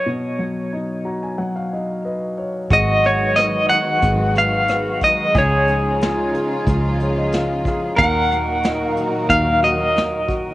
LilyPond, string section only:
\new Staff \with { instrumentName = "String section" } { \clef bass \time 4/4 \key aes \dorian \tempo 4 = 91 << { r1 | <ees ges ces' ges'>1 | <des f ees' f'>1 | <bes, ees ees' ges'>1 | } \\ { r1 | aes1~ | aes1 | ges1 | } >> }